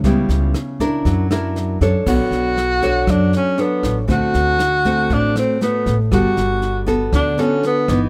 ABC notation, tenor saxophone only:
X:1
M:4/4
L:1/16
Q:1/4=118
K:F#phr
V:1 name="Tenor saxophone"
z16 | [K:Bm] F8 D2 C2 B,3 z | F8 D2 =C2 B,3 z | F6 z2 D2 C2 B,3 z |]